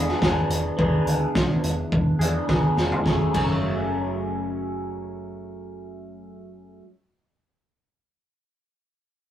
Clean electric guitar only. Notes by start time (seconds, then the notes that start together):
Already playing: E3 B3 D4 G#4
0.20 E3 B3 D4 G#4
0.77 E3 B3 D4 G#4
2.19 E3 B3 D4 G#4
2.48 E3 B3 D4 G#4
3.04 F#3 A3 C#4
3.08 G#4
3.33 F#3 A3 C#4 G#4